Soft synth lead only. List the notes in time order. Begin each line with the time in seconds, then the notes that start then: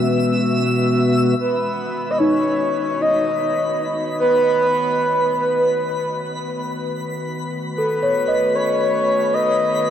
1.41 B4
2.11 D#5
2.18 C#5
3.02 D#5
4.19 B4
7.76 B4
8.55 C#5
9.34 D#5